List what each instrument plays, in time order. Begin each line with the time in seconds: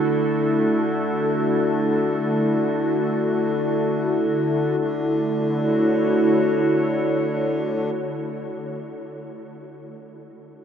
Already playing: harmonium D3, ambient pad D3 A3 E4 F#4 A4
4.77 harmonium D3, ambient pad D3
4.88 ambient pad A3
5.01 ambient pad E4
5.13 ambient pad F#4
5.23 ambient pad C#5